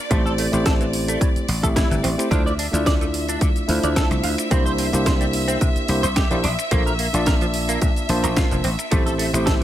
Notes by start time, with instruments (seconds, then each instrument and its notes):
Already playing: violin section D5
0.10 slap bass A1, tine electric piano A3 C4 E4 G4 C5, clean electric guitar A3, kick, closed hi-hat, shaker
0.26 clean electric guitar A4, shaker
0.38 clean electric guitar A3, open hi-hat
0.52 slap bass A1, tine electric piano A3 C4 E4 G4 C5, closed hi-hat, shaker
0.66 clean electric guitar A4, kick, snare, closed hi-hat, shaker
0.81 clean electric guitar E3, closed hi-hat, shaker
0.93 open hi-hat
1.08 clean electric guitar A3, closed hi-hat, shaker
1.21 clean electric guitar A2, kick, closed hi-hat, shaker
1.36 muted slap bass stroke, closed hi-hat, shaker
1.48 slap bass A1, open hi-hat
1.62 slap bass A1, tine electric piano A3 C4 E4 G4 E5, clean electric guitar A4, kick, closed hi-hat, shaker
1.76 clean electric guitar E4, finger snap, kick, snare, closed hi-hat, shaker
1.91 slap bass G1, clean electric guitar E3, closed hi-hat, shaker
2.04 slap bass A1, clean electric guitar C4, open hi-hat
2.18 tine electric piano A3 C4 E4 G4 C5, finger snap, closed hi-hat, shaker
2.31 slap bass D2, tine electric piano A3 D4 E4 F4 C5, clean electric guitar D4, violin section E5, kick, closed hi-hat, shaker
2.46 clean electric guitar D5, shaker
2.59 clean electric guitar D4, open hi-hat
2.72 slap bass D2, tine electric piano A3 D4 E4 F4 D5, closed hi-hat, shaker
2.86 clean electric guitar D5, kick, snare, closed hi-hat, shaker
3.01 clean electric guitar A3, closed hi-hat, shaker
3.14 open hi-hat
3.29 clean electric guitar D4, closed hi-hat, shaker
3.41 clean electric guitar D3, kick, closed hi-hat, shaker
3.56 closed hi-hat, shaker
3.68 slap bass D2, tine electric piano A3 D4 E4 F4 C5, open hi-hat
3.83 slap bass D2, clean electric guitar D5, closed hi-hat, shaker
3.96 clean electric guitar A4, finger snap, kick, snare, closed hi-hat, shaker
4.11 slap bass C2, clean electric guitar A3, closed hi-hat, shaker
4.24 slap bass D2, clean electric guitar F4, open hi-hat
4.38 finger snap, closed hi-hat, shaker
4.50 slap bass C2, tine electric piano A#3 D4 E4 G4 C5, clean electric guitar C4, kick, closed hi-hat, shaker
4.66 clean electric guitar C5, shaker
4.78 clean electric guitar C4, open hi-hat
4.93 slap bass C2, tine electric piano A#3 D4 E4 G4 C5, closed hi-hat, shaker
5.06 clean electric guitar C5, kick, snare, closed hi-hat, shaker
5.21 clean electric guitar G3, closed hi-hat, shaker
5.33 open hi-hat
5.48 clean electric guitar C4, closed hi-hat, shaker
5.61 clean electric guitar C3, kick, closed hi-hat, shaker
5.76 muted slap bass stroke, closed hi-hat, shaker
5.88 slap bass C2, tine electric piano A#3 D4 E4 G4 C5, open hi-hat
6.03 slap bass C2, clean electric guitar C5, closed hi-hat, shaker
6.16 clean electric guitar G4, finger snap, kick, snare, closed hi-hat, shaker
6.31 slap bass A#1, clean electric guitar G3, tine electric piano A#3 D4 E4 G4 C5, closed hi-hat, shaker
6.44 slap bass A#1, clean electric guitar D4, open hi-hat
6.59 finger snap, closed hi-hat, shaker
6.71 slap bass A#1, tine electric piano A#3 D4 F4 A4 C5, clean electric guitar A#3, kick, closed hi-hat, shaker
6.86 clean electric guitar A#4, shaker
6.99 clean electric guitar A#3, open hi-hat
7.13 slap bass A#1, tine electric piano A#3 D4 F4 D5 A5, closed hi-hat, shaker
7.26 clean electric guitar A#4, kick, snare, closed hi-hat, shaker
7.41 clean electric guitar F3, closed hi-hat, shaker
7.54 open hi-hat
7.69 clean electric guitar A#3, closed hi-hat, shaker
7.82 clean electric guitar A#2, kick, closed hi-hat, shaker
7.96 closed hi-hat, shaker
8.09 slap bass A#1, tine electric piano A#3 D4 F4 C5 A5, open hi-hat
8.24 slap bass A#1, clean electric guitar A#4, closed hi-hat, shaker
8.36 clean electric guitar F4, finger snap, kick, snare, closed hi-hat, shaker
8.51 slap bass F1, clean electric guitar F3, closed hi-hat, shaker
8.64 slap bass A1, clean electric guitar C4, open hi-hat
8.79 finger snap, closed hi-hat, shaker
8.91 slap bass A1, tine electric piano A3 C4 E4 G4 C5, clean electric guitar A3, kick, closed hi-hat, shaker
9.06 clean electric guitar A4, closed hi-hat, shaker
9.18 clean electric guitar A3, open hi-hat
9.33 slap bass A1, tine electric piano A3 C4 E4 G4 C5, finger snap, closed hi-hat, shaker
9.46 clean electric guitar A4, kick, snare, closed hi-hat, shaker